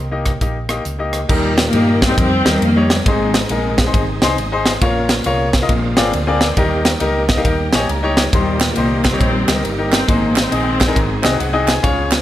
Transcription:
Already playing: C2 D#3
0.11 A#3 D#4 G4 D#5
0.25 kick, cross-stick, closed hi-hat
0.41 A#1 A#3 D#4 G4 D#5, kick, closed hi-hat
0.69 A#3 D#4 G4 D#5, cross-stick, closed hi-hat
0.85 C#2, closed hi-hat
0.99 A#3 D#4 G4 D#5
1.13 cross-stick, closed hi-hat
1.29 D#2 A#2 D#3 G3 A#3 D#4 G4 A#4, kick, crash
1.58 snare, ride
1.66 D#3 G3 A#3
1.73 G2 D#4 G4 A#4, ride
2.02 C4, kick, snare, ride
2.08 D#4 G4 A#4
2.18 F2 D#3 G3 C4, kick, ride
2.45 D#2 D#4 G4 A#4, snare, ride
2.62 F2 A#3, ride
2.76 D#4 G4 C#5
2.90 A#3, snare, ride
3.05 G#1 G#2 C3 D#3 G#3 C4 D#4 G#4 C5, kick, ride
3.34 snare, ride
3.49 A#1 C3 D#3 G#3 D#4 G#4 A#4, ride
3.78 kick, snare, ride
3.86 D#4 G#4 C5
3.94 G#1, kick, ride
4.22 C2 D#4 G#4 C5, snare, ride
4.37 G#1 D#5, ride
4.51 D#4 G#4 C5 F5
4.66 snare, ride
4.81 A#1 A#2 C4 F4 A#4 C#5, kick, ride
4.86 C#4
5.09 snare, ride
5.24 C2 F4 G#4 A#4 C#5, ride
5.53 F4 A#4, kick, snare, ride
5.62 F4 A#4 D#5
5.69 A#1 A#2 G#3 C4 D4 F4 A#4, kick, ride
5.97 G#1 C4 F4 G#4 A#4 D5, snare, ride
6.13 D2 F4 A#4, ride
6.27 C4 F4 G#4 A#4 D5
6.41 G4 C5, snare, ride
6.57 D#2 D#3 G3 A#3 D#4 G4 A#4, kick, ride
6.85 snare, ride
7.00 C#2 D#4 G4 A#4, ride
7.29 D#5, kick, snare, ride
7.37 D#4 G4 A#4 F5
7.45 D#2 G5, kick, ride
7.73 A#1 D#4 G4 C#5 G#5, snare, ride
7.89 C#2, ride
8.03 D#4 G4 C#5
8.17 snare, ride
8.33 D#2 A#2 D#3 G3 D#4 G4 C5, kick, ride
8.60 snare, clap, ride
8.71 D#3 G3 A#3
8.76 C2 D#4 G4 C5, ride
9.05 D#3 G3 C4, kick, snare, clap, ride
9.13 D#4 G4 C#5
9.21 A#1, kick, ride
9.48 C#2 D#4 G4 A#4, snare, clap, ride
9.64 G1, ride
9.78 D#4 G4 A#4
9.92 C4, snare, clap, ride
10.07 G#1 G#2 D#3 G#3 A#3 C4 D#4 G#4 C5, kick, ride
10.36 D#3 G#3 C4, snare, clap, ride
10.51 A#1 D#4 G#4 D#5, ride
10.81 kick, snare, clap, ride
10.88 D#4 G#4 A#4
10.94 G#1 G#2 F#3 G#3 B3 D#4 G#4, kick, ride
11.00 C4
11.22 C2 C4 D#4 F#4 G#4 D#5, snare, clap, ride
11.40 C2 F#5, ride
11.53 C4 D#4 F#4 G#4 D#5
11.67 G#5, snare, clap, ride
11.82 C#2 C#3 C#4 D#4 F4 G#4 C#5, kick, ride
11.88 F4
12.12 snare, clap, ride

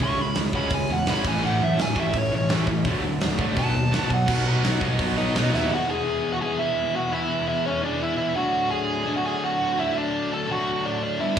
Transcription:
0.00 C#2 C#3 G#3 C#4 E4 C#6, kick
0.17 C#2 C#3 G#3 C#4 E4
0.22 B5
0.35 C#2 C#3 G#3 C#4 E4, snare, open hi-hat
0.53 C#2 C#3 G#3 C#4 E4 B5, kick
0.70 C#2 C#3 G#3 C#4 E4, kick, open hi-hat
0.74 G#5
0.88 E2 C#3 G#3 C#4 E4 F#5
1.06 G#1 C#3 G#3 C#4 E4, snare, open hi-hat
1.11 B5
1.24 A1 A2 E3 A3 C#4 E4 G#5, kick, crash
1.42 A1 A2 E3 A3 C#4 E4 F#5
1.60 F#2 A2 E3 A3 C#4 E4 E5
1.77 A1 A2 E3 A3 C#4 E4, snare, open hi-hat
1.82 G#5
1.95 A1 A2 E3 A3 C#4 E4, kick
2.00 E5
2.13 A1 A2 E3 A3 C#4 E4, kick, open hi-hat
2.18 C#5
2.31 A1 A2 E3 A3 C#4 E4
2.35 C#5
2.49 A1 A2 E3 A3 C#4 E4, snare, open hi-hat
2.67 A2 E3 A3 C#4 E4, kick
2.85 D2 D3 F#3 A3 D4, kick, open hi-hat
3.04 D2 D3 F#3 A3 D4
3.21 D2 D3 F#3 A3 D4, snare, open hi-hat
3.39 D2 D3 F#3 A3 D4, kick
3.55 B1 B2 F#3 B3 D#4 A5, kick, open hi-hat
3.74 D#2 B2 F#3 B3 D#4
3.92 B1 B2 F#3 B3 D#4, snare, open hi-hat
4.10 B2 F#3 B3 D#4 F#5, kick
4.27 B1 B2 F#3 B3 D#4 F#4, kick, crash
4.44 B2 F#3 B3 D#4 F#4
4.62 B1 B2 F#3 B3 D#4 F#4, snare, open hi-hat
4.80 B1 B2 F#3 B3 D#4 F#4, kick
4.98 B1 B2 F#3 B3 D#4 F#4, kick, open hi-hat
5.16 B1 B2 F#3 B3 D#4 F#4 D#5
5.34 B1 B2 F#3 B3 D#4 F#4 D#5, snare, open hi-hat
5.52 D#2 B2 F#3 B3 D#4 E4 F#4 E5, snare
5.70 E3 G#3 B3 E4 G#4 F#5
5.74 F#4
5.90 G#4 G#5
6.33 F#4 F#5
6.40 E3 G#3 B3 E4 G#4 G#5
6.59 E4 E5
6.95 F#4 F#5
7.11 E3 G#3 B3 E4 G#4 E5
7.48 E4 E5
7.66 C#4 C#5
7.82 E3 G#3 B3 D4 E4 G#4 D5
8.02 E4 E5
8.17 E4 E5
8.35 D3 F#3 A3 D4 F#4 F#5
8.71 G#4 G#5
9.06 D3 F#3 A3 D4
9.16 F#4 F#5
9.26 G#4 G#5
9.45 F#4 F#5
9.77 D3 F#3 A3 D4 E4 E5
9.98 D4 D5
10.33 A4 A5
10.47 D3 F#3 A3 D4 F#5
10.52 F#4
10.86 D4 D5
11.03 D4 D5
11.19 G2 D3 G3 B3 D4 E4 E5
11.36 G2

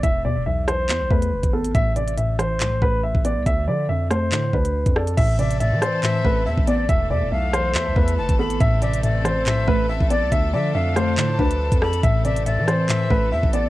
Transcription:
0.03 E1 E2 E5, kick, closed hi-hat
0.25 E2 B2 D5
0.36 E1
0.46 B1 E2 E5
0.68 E3 C5, cross-stick, closed hi-hat
0.89 E2, clap, closed hi-hat
1.00 B1
1.10 E2 A3 B4, kick
1.22 closed hi-hat
1.32 F1
1.43 G#1, kick, closed hi-hat
1.53 B3 A4
1.64 closed hi-hat
1.75 A1 A2 E5, kick, closed hi-hat
1.96 C3 D5, closed hi-hat
2.08 closed hi-hat
2.18 A2 E5, closed hi-hat
2.39 E3 C5, cross-stick, closed hi-hat
2.60 B1 A2, clap, closed hi-hat
2.72 A1
2.82 A1 A3 B4, kick
3.03 E5
3.15 A1, kick
3.25 B3 D5, closed hi-hat
3.36 C2
3.46 D2 D3 E5, kick, closed hi-hat
3.68 D3 F3 D5
3.89 F2 D3 E5
4.10 A3 C5, cross-stick, closed hi-hat
4.32 A2 D3, clap, closed hi-hat
4.53 D2 D4 B4, kick
4.65 closed hi-hat
4.86 F2, kick, closed hi-hat
4.96 A4 D5, cross-stick
5.07 closed hi-hat
5.17 A1 A2 E3 C4 A4 E5, kick, closed hi-hat, crash
5.39 C3 D5 E5, closed hi-hat
5.51 closed hi-hat
5.60 A2 D5 E5, closed hi-hat
5.72 E3
5.82 E3 C5, cross-stick, closed hi-hat
6.03 A2 E5, clap, closed hi-hat
6.25 A1 A3 B4, kick
6.46 E2 E5
6.58 A1, kick
6.67 B3 D5, closed hi-hat
6.89 E1 E2 A3 A4 E5, kick, closed hi-hat
7.10 E2 B2 D5 E5
7.22 E1
7.32 B1 E2 E5 F5
7.53 E3 C5, cross-stick, closed hi-hat
7.75 E2 E5, clap, closed hi-hat
7.86 B1
7.96 E2 A3 B4, kick
8.08 closed hi-hat
8.18 F1 A5
8.29 G#1, kick, closed hi-hat
8.39 B3 A4 B5
8.50 closed hi-hat
8.60 A1 A2 A3 C4 E5, kick, closed hi-hat
8.82 C3 D5 E5, closed hi-hat
8.94 closed hi-hat
9.03 A2 D5 E5, closed hi-hat
9.25 E3 C5, cross-stick, closed hi-hat
9.46 B1 A2 E5, clap, closed hi-hat
9.58 A1
9.68 A1 A3 B4, kick
9.89 E5
10.00 A1, kick
10.10 B3 D5, closed hi-hat
10.22 C2
10.32 D2 D3 F3 A3 D4 E5, kick, closed hi-hat
10.53 D3 F3 D5 E5
10.75 F2 D3 E5 F5
10.96 A3 C5, cross-stick, closed hi-hat
11.18 A2 D3 A5, clap, closed hi-hat
11.39 D2 D4 B4, kick
11.51 closed hi-hat
11.72 F2, kick, closed hi-hat
11.82 A4 D5 B5, cross-stick
11.93 closed hi-hat
12.03 A1 A2 E3 C4 E5, kick, closed hi-hat
12.25 C3 D5 E5, closed hi-hat
12.36 closed hi-hat
12.46 A2 D5 E5, closed hi-hat
12.58 E3
12.68 E3 C5, cross-stick, closed hi-hat
12.89 A2 E5, clap, closed hi-hat
13.10 A1 A3 B4, kick
13.32 E2 E5
13.43 A1, kick
13.53 B3 D5, closed hi-hat

